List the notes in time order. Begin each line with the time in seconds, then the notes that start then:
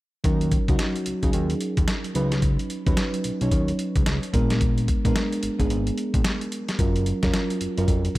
0.24 D#2 F#3 C#4 D#4 A#4, kick, closed hi-hat
0.41 closed hi-hat
0.51 kick, closed hi-hat
0.68 C#2 F#3 C#4 D#4 F#4, kick, closed hi-hat
0.79 snare, closed hi-hat
0.96 closed hi-hat
1.06 C#2, closed hi-hat
1.22 C#2 F#3 C#4 D#4 G#4, kick, closed hi-hat
1.33 D#2, closed hi-hat
1.50 closed hi-hat
1.61 closed hi-hat
1.77 D#2, kick, closed hi-hat
1.88 snare, closed hi-hat
2.04 closed hi-hat
2.14 C#2 F#3 C#4 D#4 B4, closed hi-hat
2.32 snare, closed hi-hat
2.42 kick, closed hi-hat
2.59 closed hi-hat
2.70 closed hi-hat
2.86 D#2 F#3 C#4 D#4 B4, kick, closed hi-hat
2.97 snare, closed hi-hat
3.14 closed hi-hat
3.24 B1, closed hi-hat
3.41 B1 F#3 C#4 D#4 C#5, closed hi-hat
3.51 D#2, kick, closed hi-hat
3.68 closed hi-hat
3.79 closed hi-hat
3.96 C#2, kick, closed hi-hat
4.06 C#2, snare, closed hi-hat
4.23 closed hi-hat
4.33 A#1 G#3 B3 D4 A#4, kick, closed hi-hat
4.50 snare, closed hi-hat
4.61 kick, closed hi-hat
4.78 closed hi-hat
4.88 kick, closed hi-hat
5.05 A#1 G#3 B3 D4 A#4, kick, closed hi-hat
5.16 snare, closed hi-hat
5.32 closed hi-hat
5.43 G#1, closed hi-hat
5.59 G#1 G#3 B3 D4 G#4, kick, closed hi-hat
5.70 G#1, closed hi-hat
5.87 closed hi-hat
5.98 closed hi-hat
6.14 A#1, kick, closed hi-hat
6.24 snare, closed hi-hat
6.41 closed hi-hat
6.52 closed hi-hat
6.68 snare, closed hi-hat
6.79 F#1 F#3 C#4 F4 A#4, kick, closed hi-hat
6.96 closed hi-hat
7.06 closed hi-hat
7.23 F1 F#3 C#4 F4 A#4, kick, snare, closed hi-hat
7.34 snare, closed hi-hat
7.50 closed hi-hat
7.61 F#1, closed hi-hat
7.77 F#1 F#3 C#4 F4 A#4, closed hi-hat
7.88 F1, kick, closed hi-hat
8.05 closed hi-hat